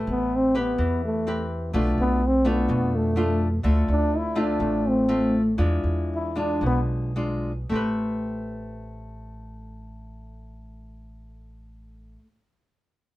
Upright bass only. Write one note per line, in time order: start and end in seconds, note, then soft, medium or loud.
0.07 0.75 A1 medium
0.78 1.70 E2 medium
1.74 1.96 B1 medium
1.98 2.65 B1 medium
2.69 3.61 F2 medium
3.64 3.87 D2 medium
3.88 4.56 D2 medium
4.60 5.55 A1 medium
5.58 5.82 E2 medium
5.84 6.57 E2 medium
6.61 7.66 B1 medium
7.70 12.15 A1 medium